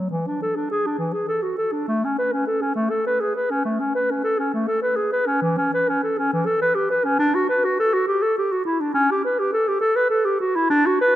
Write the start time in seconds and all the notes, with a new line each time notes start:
0.10 E3
0.27 D4
0.42 A4
0.56 D4
0.71 G#4
0.86 D4
0.98 E3
1.13 G#4
1.28 A4
1.42 F#4
1.58 A4
1.72 D4
1.88 A3
2.05 C#4
2.18 B4
2.32 C#4
2.47 A4
2.62 C#4
2.76 A3
2.90 A4
3.06 B4
3.20 G#4
3.36 B4
3.51 C#4
3.65 A3
3.80 C#4
3.95 B4
4.10 C#4
4.24 A4
4.39 C#4
4.54 A3
4.67 A4
4.82 B4
4.96 G#4
5.12 B4
5.26 C#4
5.41 E3
5.58 C#4
5.74 B4
5.89 C#4
6.03 A4
6.18 C#4
6.33 E3
6.46 A4
6.62 B4
6.75 G4
6.90 B4
7.04 C#4
7.19 D4
7.35 F#4
7.49 B4
7.64 F#4
7.79 A4
7.93 F#4
8.07 G4
8.22 A4
8.38 G4
8.52 F#4
8.65 E4
8.80 D4
8.94 C#4
9.11 G4
9.25 B4
9.39 G4
9.53 A4
9.68 G4
9.81 A4
9.96 B4
10.10 A4
10.25 G4
10.40 F#4
10.56 E4
10.70 D4
10.86 F#4
11.01 B4